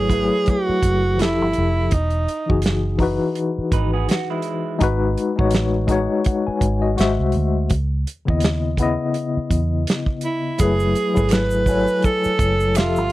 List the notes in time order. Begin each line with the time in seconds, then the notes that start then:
Already playing: G#1 F#3 A3 E4 G#4 A4 B4 C#5
0.09 F#3 A3 E4 G#4, kick, closed hi-hat
0.14 B4
0.46 F#4, kick, closed hi-hat
0.69 muted fingered electric bass stroke
0.83 F#1, kick, closed hi-hat
1.17 F3 E4 G4, closed hi-hat
1.21 F1 E4 A4, snare
1.42 G1
1.53 closed hi-hat
1.58 F1
1.91 E1 D#4, kick, closed hi-hat
2.10 closed hi-hat
2.28 closed hi-hat
2.46 E3 D#4 F#4, kick
2.51 F#1 G#4
2.62 snare, closed hi-hat
2.98 E3 D#4 F#4, kick, open hi-hat
3.03 B4
3.35 closed hi-hat
3.58 muted fingered electric bass stroke
3.72 G#1 D#4 B4, kick, closed hi-hat
3.93 B3 G#4
4.09 F#4, snare, closed hi-hat
4.30 G#3 E4
4.42 closed hi-hat
4.79 G#1 G#3 D#4 F#4, kick, closed hi-hat
4.83 B4
5.18 closed hi-hat
5.36 A1 G#3 D#4 F#4, kick
5.41 C#5
5.51 snare, closed hi-hat
5.87 G#3 D#4 F#4, kick, closed hi-hat
5.92 C#5
6.24 F#5, kick, closed hi-hat
6.47 B4 G#5, muted fingered electric bass stroke
6.61 G#1, kick, closed hi-hat
6.82 F#4 D#5
6.96 G#1 G#3 F#4 C5, closed hi-hat
7.00 E5, snare
7.19 C2
7.32 D2, closed hi-hat
7.70 C#2, kick, closed hi-hat
8.07 closed hi-hat
8.25 C#3 B3 E4, kick
8.29 D#2 D#5
8.40 snare, closed hi-hat
8.77 C#3 B3 E4, kick, closed hi-hat
8.82 D#5
9.14 closed hi-hat
9.37 muted fingered electric bass stroke
9.51 E2, kick, closed hi-hat
9.87 snare, closed hi-hat
10.06 kick
10.21 E4, closed hi-hat
10.58 F#1 F#3 A3 E4 G#4, kick, closed hi-hat, shaker
10.63 B4
10.80 shaker
10.95 closed hi-hat, shaker
11.14 G#1 F#3 E4 G#4 A4, kick, shaker
11.18 B4
11.29 B4, finger snap, snare, closed hi-hat, shaker
11.51 shaker
11.66 F#3 E4 A4 G#5, kick, open hi-hat, shaker
11.71 C#5
11.88 shaker
12.02 A4, kick, closed hi-hat, shaker
12.24 muted fingered electric bass stroke, shaker
12.39 F#1, kick, closed hi-hat, shaker
12.60 shaker
12.75 F1 F3 F4 G4 E5, finger snap, snare, closed hi-hat, shaker
12.80 A4
12.96 G1, shaker